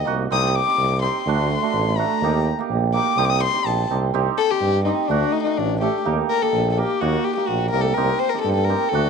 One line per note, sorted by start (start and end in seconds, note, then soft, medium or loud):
0.05 0.28 C2 medium
0.05 0.17 A#3 medium
0.05 0.18 D#4 medium
0.05 0.18 F#4 loud
0.30 0.60 C2 loud
0.30 0.48 C4 medium
0.30 0.48 D#4 medium
0.30 0.49 G4 medium
0.30 0.47 D#6 loud
0.47 0.57 D#6 medium
0.55 1.01 D6 loud
0.66 0.84 C4 medium
0.66 0.84 D#4 medium
0.66 0.84 G4 medium
0.78 1.07 C2 loud
1.02 1.14 C4 medium
1.02 1.14 D#4 medium
1.02 1.15 G4 medium
1.02 1.99 C6 medium
1.26 1.55 D2 loud
1.26 1.45 A3 medium
1.26 1.45 D4 medium
1.26 1.45 F#4 medium
1.62 1.80 A3 medium
1.62 1.80 D4 medium
1.62 1.80 F#4 medium
1.73 2.02 A1 loud
1.97 2.10 A3 medium
1.97 2.10 D4 medium
1.97 2.10 F#4 medium
1.97 2.45 A#5 medium
2.22 2.50 D#2 loud
2.22 2.40 A#3 medium
2.22 2.41 D#4 medium
2.22 2.41 G4 medium
2.59 2.76 A#3 medium
2.59 2.77 D#4 medium
2.59 2.77 G4 medium
2.69 2.98 A#1 medium
2.94 3.05 A#3 medium
2.94 3.06 D#4 medium
2.94 3.06 G4 medium
2.94 3.19 D6 medium
3.17 3.46 C2 loud
3.17 3.35 C4 medium
3.17 3.36 D#4 medium
3.17 3.36 G4 loud
3.17 3.26 D#6 medium
3.25 3.31 D6 medium
3.30 3.41 D#6 loud
3.43 3.68 C6 loud
3.54 3.71 C4 medium
3.54 3.71 D#4 medium
3.54 3.72 G4 medium
3.65 3.87 A#1 medium
3.65 3.90 A5 medium
3.90 4.11 C2 medium
3.90 4.02 C4 medium
3.90 4.02 D#4 medium
3.90 4.02 G4 medium
4.14 4.28 C2 medium
4.14 4.31 C4 medium
4.14 4.32 D#4 medium
4.14 4.32 G4 loud
4.38 4.52 A4 loud
4.50 4.68 C4 medium
4.50 4.68 D#4 soft
4.50 4.84 G4 loud
4.50 4.68 G4 medium
4.61 4.90 G2 medium
4.85 4.97 C4 medium
4.85 5.09 D#4 medium
4.85 4.97 D#4 medium
4.85 4.98 G4 medium
5.07 5.24 D2 loud
5.07 5.27 A3 medium
5.07 5.33 D4 loud
5.07 5.27 D4 medium
5.07 5.28 F#4 loud
5.32 5.42 D#4 loud
5.43 5.63 A3 medium
5.43 5.63 D4 soft
5.43 5.59 D#4 medium
5.43 5.63 F#4 medium
5.57 5.86 A1 medium
5.57 5.80 D4 medium
5.81 5.93 A3 medium
5.81 5.93 D4 medium
5.81 6.03 G4 medium
5.81 5.93 A4 medium
6.05 6.20 D#2 medium
6.05 6.23 A#3 medium
6.05 6.23 D#4 medium
6.05 6.23 G4 medium
6.30 6.43 A#4 loud
6.41 6.59 A#3 medium
6.41 6.59 D#4 medium
6.41 6.59 G4 medium
6.41 6.71 A4 medium
6.53 6.82 A#1 loud
6.72 6.80 A4 medium
6.77 6.89 A#3 medium
6.77 6.89 D#4 medium
6.77 7.02 G4 medium
6.77 6.89 A#4 medium
7.01 7.15 D#2 loud
7.01 7.19 A#3 medium
7.01 7.19 D#4 medium
7.01 7.26 F#4 medium
7.01 7.19 F#4 medium
7.24 7.35 G4 loud
7.35 7.55 A#3 medium
7.35 7.55 D#4 medium
7.35 7.49 G4 medium
7.35 7.55 G4 medium
7.47 7.70 A#1 medium
7.47 7.70 F#4 medium
7.70 7.94 C2 medium
7.70 7.84 A#3 medium
7.70 7.82 A#4 medium
7.74 7.85 D#4 medium
7.74 7.85 G4 medium
7.81 7.95 A4 medium
7.94 8.11 C2 loud
7.94 8.14 C4 medium
7.94 8.15 D#4 medium
7.94 8.15 G4 medium
7.94 8.20 A#4 medium
8.19 8.31 C5 loud
8.29 8.40 A#4 medium
8.34 8.51 C4 medium
8.34 8.51 D#4 medium
8.34 8.51 G4 medium
8.41 8.53 A4 medium
8.45 8.73 G2 loud
8.54 8.66 A4 medium
8.64 8.90 A#4 medium
8.69 8.80 C4 medium
8.69 8.81 D#4 medium
8.69 8.81 G4 medium
8.89 9.10 A4 loud
8.93 9.07 D2 loud
8.93 9.10 A3 medium
8.93 9.10 D4 medium
8.93 9.10 F#4 loud